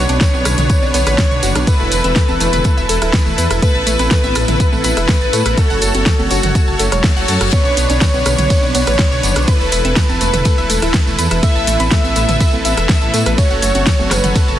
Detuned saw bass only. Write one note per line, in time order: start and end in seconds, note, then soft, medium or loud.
0.09 0.18 B1 medium
0.34 0.42 B1 medium
0.45 0.55 B1 loud
0.58 0.67 B1 loud
0.82 0.91 B1 medium
0.94 1.04 B1 loud
1.07 1.16 A1 loud
1.31 1.40 B1 medium
1.43 1.52 F#1 loud
1.55 1.64 B1 medium
1.80 1.89 E1 medium
1.92 2.01 E1 loud
2.04 2.13 E1 medium
2.29 2.37 E1 medium
2.40 2.50 E1 loud
2.53 2.62 E1 loud
2.77 2.86 E1 medium
2.89 2.99 E1 loud
3.02 3.11 D1 medium
3.26 3.35 E1 medium
3.38 3.47 E2 loud
3.51 3.59 E1 medium
3.75 3.84 A1 medium
3.87 3.96 A1 loud
3.99 4.08 A1 medium
4.24 4.33 A1 medium
4.36 4.45 A1 loud
4.48 4.57 A1 medium
4.73 4.81 A1 medium
4.84 4.94 A1 loud
4.97 5.06 E1 medium
5.21 5.30 A1 medium
5.33 5.43 A2 loud
5.46 5.55 A1 medium
5.70 5.79 F#1 medium
5.82 5.91 F#1 loud
5.95 6.03 F#1 medium
6.19 6.28 F#1 medium
6.31 6.40 F#1 loud
6.43 6.52 F#1 loud
6.68 6.77 F#1 medium
6.79 6.89 F#1 loud
6.92 7.01 E1 medium
7.16 7.25 F#1 medium
7.28 7.38 F#2 loud
7.41 7.50 F#1 medium
7.65 7.74 B1 medium
7.77 7.86 B1 loud
7.90 7.98 B1 medium
8.14 8.23 B1 medium
8.26 8.35 B1 loud
8.38 8.47 B1 loud
8.63 8.72 B1 medium
8.75 8.84 B1 loud
8.87 8.96 A1 medium
9.12 9.20 B1 medium
9.23 9.33 F#1 loud
9.36 9.45 B1 medium
9.60 9.69 E1 medium
9.72 9.82 E1 loud
9.85 9.94 E1 medium
10.09 10.18 E1 medium
10.21 10.30 E1 loud
10.34 10.42 E1 loud
10.58 10.67 E1 medium
10.70 10.79 E1 loud
10.82 10.91 D1 loud
11.07 11.16 E1 medium
11.18 11.28 E2 loud
11.31 11.40 E1 loud
11.56 11.64 A1 medium
11.67 11.77 A1 loud
11.80 11.89 A1 medium
12.04 12.13 A1 medium
12.16 12.25 A1 loud
12.29 12.37 A1 medium
12.53 12.62 A1 medium
12.65 12.74 A1 loud
12.77 12.86 E1 medium
13.02 13.11 A1 medium
13.14 13.23 A2 loud
13.26 13.35 A1 loud
13.51 13.59 F#1 medium
13.62 13.72 F#1 loud
13.75 13.84 F#1 medium
13.99 14.08 F#1 medium
14.11 14.21 F#1 loud
14.24 14.33 F#1 medium
14.48 14.57 F#1 medium